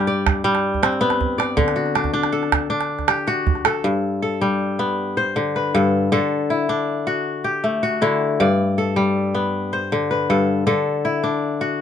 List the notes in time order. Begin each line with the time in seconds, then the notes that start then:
Already playing: G2 G3 G4 A4 B4
0.07 D5
0.27 calabash thump, calabash click
0.44 G3
0.55 calabash click
0.74 calabash thump
0.83 C4, calabash click
0.93 calabash click
1.01 B3, calabash click
1.10 calabash click
1.21 calabash thump
1.38 D5, calabash click
1.57 D3, calabash thump
1.68 calabash click
1.76 F#4
1.86 calabash click
1.95 D4, calabash click
2.04 calabash thump, calabash click
2.14 D4
2.23 calabash click
2.32 A4
2.43 calabash click
2.52 calabash thump, calabash click
2.70 D4
2.81 calabash click
2.99 calabash thump, calabash click
3.08 G4, calabash click
3.27 F#4, calabash click
3.47 calabash thump
3.55 calabash click
3.65 A4, calabash click
3.84 G2
4.22 A4
4.41 G3
4.79 B3
5.17 C5
5.36 D3
5.56 B4
5.75 G2 A4
6.12 D3 A4
6.50 E4
6.69 D4
7.07 F#4
7.44 G4
7.64 A3
7.83 F#4
8.02 D3 E4
8.40 G2 D5
8.78 A4
8.96 G3
9.35 B3
9.73 C5
9.92 D3
10.11 B4
10.30 G2 A4
10.67 D3 A4
11.05 E4
11.23 D4
11.61 F#4